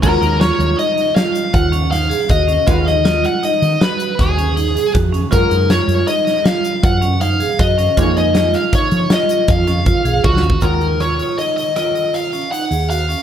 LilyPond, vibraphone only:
\new Staff \with { instrumentName = "Vibraphone" } { \time 7/4 \key ees \minor \tempo 4 = 158 f'8 ees'8 f'8 f'8 ees'4 f'4 f'8 des'8 ees'8 aes'8 ges'8 des'8 | f'8 dis'8 f'8 f'8 dis'4 fis'4 fis'8 des'8 dis'8 gis'8 fis'8 des'8 | f'8 ees'8 f'8 f'8 ees'4 f'4 f'8 des'8 ees'8 aes'8 ges'8 des'8 | f'8 ees'8 f'8 f'8 ees'4 f'4 f'8 des'8 f'8 aes'8 f'8 des'8 |
f'8 ees'8 f'8 f'8 ees'4 f'4 f'8 des'8 ees'8 aes'8 ges'8 des'8 | }